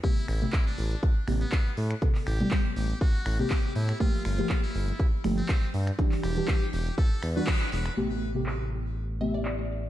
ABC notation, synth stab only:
X:1
M:4/4
L:1/16
Q:"Swing 16ths" 1/4=121
K:Am
V:1 name="Synth stab"
[C,A,B,G]3 [C,A,B,G]6- [C,A,B,G] [C,A,B,G]2 z4 | [C,A,B,A]3 [C,G,A,B,]8 [C,A,B,G] z4 | [F,A,_B,G]3 [F,A,B,G]6- [F,A,B,G] [F,A,B,G]2 z4 | [E,G,DG]3 [E,G,DG]8 [E,G,D^F] z4 |
[C,A,B,G]3 [C,A,B,G]6- [C,A,B,G] [C,A,B,G]2 z4 |]